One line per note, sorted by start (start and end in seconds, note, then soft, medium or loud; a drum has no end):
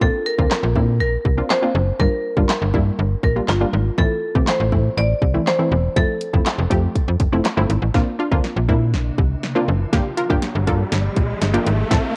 0.01 0.10 A#1 medium
0.01 0.19 A#3 medium
0.01 0.19 C4 medium
0.01 0.19 D4 medium
0.01 0.19 F4 medium
0.01 0.25 A4 medium
0.01 kick loud
0.26 0.99 A#4 loud
0.38 0.47 D2 medium
0.38 0.56 A#3 medium
0.38 0.56 C4 medium
0.38 0.56 D4 medium
0.38 0.56 F4 medium
0.38 kick medium
0.51 snare medium
0.51 clap loud
0.63 0.77 A#1 loud
0.76 1.02 A#2 loud
0.76 1.04 A#3 medium
0.76 1.04 C4 medium
0.76 1.05 D4 medium
0.76 1.05 E4 medium
0.76 kick medium
1.00 1.17 A#1 loud
1.00 1.52 A#4 loud
1.25 1.42 C2 medium
1.25 kick medium
1.37 1.49 A#3 medium
1.37 1.49 C4 medium
1.37 1.49 D4 medium
1.37 1.49 F4 medium
1.50 2.01 C5 loud
1.50 snare medium
1.50 clap loud
1.62 1.80 A#3 medium
1.62 1.80 C4 medium
1.62 1.80 D4 medium
1.62 1.80 F4 medium
1.75 1.92 F#1 medium
2.00 2.08 G1 loud
2.00 2.17 G3 medium
2.00 2.17 A#3 medium
2.00 2.17 D4 medium
2.00 2.17 F4 medium
2.00 2.95 A#4 medium
2.00 kick loud
2.37 2.45 G1 medium
2.37 2.54 G3 medium
2.37 2.54 A#3 medium
2.37 2.54 D4 medium
2.37 2.54 F4 medium
2.37 kick medium
2.49 snare medium
2.49 clap loud
2.62 2.75 G1 medium
2.74 2.91 G2 loud
2.74 3.03 G3 medium
2.74 3.03 A#3 medium
2.74 3.03 D4 medium
2.74 3.03 E4 loud
2.74 kick medium
2.99 3.16 G1 medium
3.23 3.40 A#1 medium
3.23 3.49 A#4 medium
3.23 kick medium
3.36 3.47 G3 medium
3.36 3.47 A#3 medium
3.36 3.48 D4 medium
3.36 3.48 F4 medium
3.48 3.65 G1 medium
3.48 4.00 F4 medium
3.48 snare medium
3.48 clap loud
3.61 3.78 G3 medium
3.61 3.78 A#3 medium
3.61 3.78 D4 medium
3.61 3.78 F4 medium
3.73 3.90 G#1 medium
3.98 4.06 A1 loud
3.98 4.15 E3 medium
3.98 4.15 A3 medium
3.98 4.15 C4 medium
3.98 4.15 E4 medium
3.98 4.49 A4 medium
3.98 kick loud
4.35 4.44 C2 medium
4.35 4.52 E3 medium
4.35 4.52 A3 medium
4.35 4.53 C4 medium
4.35 4.53 G4 medium
4.35 kick medium
4.47 4.94 C5 medium
4.47 snare medium
4.47 clap loud
4.60 4.74 A1 medium
4.72 4.89 A2 loud
4.72 5.01 E3 medium
4.72 5.01 A3 medium
4.72 5.01 C4 medium
4.72 5.01 E4 medium
4.72 kick medium
4.97 5.14 A1 loud
4.97 5.48 D5 loud
5.22 5.39 C2 medium
5.22 kick medium
5.34 5.46 E3 medium
5.34 5.46 A3 medium
5.34 5.46 C4 medium
5.34 5.46 E4 medium
5.47 5.98 C5 loud
5.47 snare medium
5.47 clap loud
5.59 5.76 E3 medium
5.59 5.76 A3 medium
5.59 5.76 C4 medium
5.59 5.76 E4 medium
5.72 5.88 E1 medium
5.96 6.05 F1 loud
5.96 6.13 F3 medium
5.96 6.14 A3 medium
5.96 6.14 C4 medium
5.96 6.14 E4 medium
5.96 7.41 A4 medium
5.96 kick loud
5.96 closed hi-hat medium
6.21 closed hi-hat medium
6.33 6.42 F1 loud
6.33 6.51 F3 medium
6.33 6.51 A3 medium
6.33 6.51 C4 medium
6.33 6.51 E4 medium
6.33 kick medium
6.46 snare medium
6.46 clap loud
6.46 closed hi-hat medium
6.58 6.67 F1 loud
6.70 6.88 F2 loud
6.70 6.99 F3 medium
6.70 6.99 A3 medium
6.70 6.99 C4 medium
6.70 6.99 G4 loud
6.70 kick medium
6.70 closed hi-hat medium
6.95 kick medium
6.95 closed hi-hat medium
7.08 7.16 F2 medium
7.20 7.28 F1 medium
7.20 kick medium
7.20 closed hi-hat medium
7.32 7.41 F1 medium
7.32 7.44 F3 medium
7.32 7.44 A3 medium
7.32 7.44 C4 medium
7.32 7.44 E4 medium
7.45 snare medium
7.45 clap loud
7.45 closed hi-hat medium
7.57 7.66 G1 medium
7.57 7.74 F3 medium
7.57 7.74 A3 medium
7.57 7.75 C4 medium
7.57 7.75 E4 loud
7.70 7.78 G#1 medium
7.70 closed hi-hat medium
7.82 7.91 A1 medium
7.94 8.03 A#1 medium
7.94 9.91 C3 medium
7.94 8.06 A#3 medium
7.94 11.87 A#3 medium
7.94 8.06 C4 medium
7.94 8.06 D4 medium
7.94 9.91 D4 medium
7.94 8.06 F4 loud
7.94 kick loud
7.94 snare medium
7.94 riser medium
8.19 8.25 D4 medium
8.19 8.25 F4 loud
8.31 8.40 D2 medium
8.31 8.49 A#3 medium
8.31 8.49 C4 medium
8.31 8.49 D4 medium
8.31 8.49 F4 loud
8.31 kick medium
8.44 snare medium
8.56 8.70 A#1 loud
8.69 8.95 A#2 loud
8.69 9.09 A#3 medium
8.69 9.09 C4 medium
8.69 9.09 D4 medium
8.69 9.09 E4 loud
8.69 kick medium
8.94 9.11 A#1 medium
8.94 snare medium
9.18 9.35 C2 medium
9.18 kick loud
9.43 snare medium
9.55 9.73 A#3 medium
9.55 9.73 C4 medium
9.55 9.73 D4 medium
9.55 9.73 F4 loud
9.68 9.85 F#1 medium
9.93 10.01 G1 loud
9.93 11.89 F3 medium
9.93 10.04 A#3 medium
9.93 10.04 D4 medium
9.93 10.05 F4 medium
9.93 11.89 G4 medium
9.93 10.05 G4 loud
9.93 kick loud
9.93 snare medium
9.93 closed hi-hat medium
10.17 10.23 F4 medium
10.17 10.24 A#4 loud
10.17 closed hi-hat medium
10.30 10.38 G1 medium
10.30 10.47 A#3 medium
10.30 10.47 D4 medium
10.30 10.47 F4 medium
10.30 10.47 G4 loud
10.30 kick medium
10.42 snare medium
10.42 closed hi-hat medium
10.55 10.69 G1 loud
10.67 10.84 G2 loud
10.67 11.07 A#3 medium
10.67 11.08 D4 medium
10.67 11.08 F4 medium
10.67 11.08 A4 loud
10.67 kick medium
10.67 closed hi-hat medium
10.92 11.09 G1 loud
10.92 snare medium
10.92 closed hi-hat medium
11.16 11.34 A#1 medium
11.16 kick loud
11.16 closed hi-hat medium
11.42 11.59 G1 medium
11.42 snare medium
11.42 closed hi-hat medium
11.54 11.71 A#3 medium
11.54 11.71 D4 medium
11.54 11.71 F4 medium
11.54 11.71 G4 loud
11.54 closed hi-hat medium
11.67 11.84 G#1 medium
11.67 closed hi-hat medium
11.91 12.00 A1 loud
11.91 12.16 C3 medium
11.91 12.02 A3 medium
11.91 12.16 A3 medium
11.91 12.03 C4 medium
11.91 12.03 E4 medium
11.91 12.16 E4 medium
11.91 12.03 A4 loud
11.91 kick loud
11.91 snare medium
11.91 closed hi-hat medium